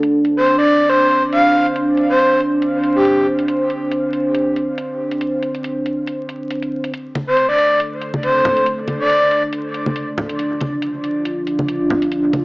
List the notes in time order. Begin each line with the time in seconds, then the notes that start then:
Already playing: D4
0.03 C5, closed hi-hat
0.25 closed hi-hat
0.37 C5
0.46 closed hi-hat
0.58 D5
0.68 closed hi-hat
0.89 C5, closed hi-hat
1.11 closed hi-hat
1.33 F5, closed hi-hat
1.66 closed hi-hat
1.76 closed hi-hat
1.97 closed hi-hat
2.09 C5
2.19 closed hi-hat
2.40 closed hi-hat
2.62 closed hi-hat
2.84 closed hi-hat
2.95 G4
3.05 closed hi-hat
3.39 closed hi-hat
3.48 closed hi-hat
3.70 closed hi-hat
3.91 closed hi-hat
4.13 closed hi-hat
4.35 closed hi-hat
4.56 closed hi-hat
4.78 closed hi-hat
5.11 closed hi-hat
5.21 closed hi-hat
5.43 closed hi-hat
5.55 closed hi-hat
5.64 closed hi-hat
5.86 closed hi-hat
6.07 closed hi-hat
6.29 closed hi-hat
6.51 closed hi-hat
6.62 closed hi-hat
6.84 closed hi-hat
6.94 D4 A4, closed hi-hat
7.15 closed hi-hat, high conga
7.27 C5
7.37 closed hi-hat
7.49 D5
7.58 closed hi-hat
7.80 closed hi-hat
8.02 closed hi-hat
8.14 high conga
8.23 C5, closed hi-hat
8.45 low conga
8.57 closed hi-hat
8.66 closed hi-hat
8.88 closed hi-hat, high conga
9.00 D5
9.10 closed hi-hat
9.31 closed hi-hat
9.53 closed hi-hat
9.74 closed hi-hat
9.86 high conga
9.96 closed hi-hat
10.18 low conga
10.29 closed hi-hat
10.39 F4, closed hi-hat
10.61 closed hi-hat, high conga
10.82 closed hi-hat
11.04 closed hi-hat
11.25 closed hi-hat
11.47 closed hi-hat
11.59 high conga
11.68 closed hi-hat
11.90 low conga
12.02 closed hi-hat
12.12 closed hi-hat
12.33 closed hi-hat, high conga